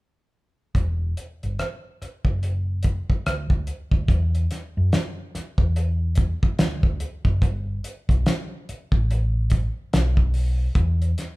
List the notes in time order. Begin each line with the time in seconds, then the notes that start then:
0.75 E1, kick, closed hi-hat
1.17 closed hi-hat
1.43 G1, closed hi-hat
1.59 cross-stick, closed hi-hat
2.02 muted fingered electric bass stroke, cross-stick, closed hi-hat
2.25 F#1, kick
2.43 closed hi-hat
2.83 kick, closed hi-hat
3.10 kick
3.26 D2, cross-stick, closed hi-hat
3.50 D2, kick
3.67 closed hi-hat
3.92 D2, kick
4.08 E2, kick, closed hi-hat
4.35 closed hi-hat
4.51 snare, closed hi-hat
4.77 F#2
4.93 snare, closed hi-hat
5.35 muted fingered electric bass stroke, snare, closed hi-hat
5.58 E2, kick
5.76 closed hi-hat
6.15 kick, closed hi-hat
6.43 kick
6.59 D2, snare, closed hi-hat
6.83 D2, kick
7.00 closed hi-hat
7.25 F#1, kick
7.42 G1, kick, closed hi-hat
7.84 closed hi-hat
8.09 B1, kick, closed hi-hat
8.26 snare, closed hi-hat
8.69 muted fingered electric bass stroke, closed hi-hat
8.92 A1, kick
9.11 closed hi-hat
9.50 kick, closed hi-hat
9.93 B1, snare, closed hi-hat
10.17 kick
10.34 open hi-hat
10.75 E2, kick, closed hi-hat
11.02 closed hi-hat
11.18 snare, closed hi-hat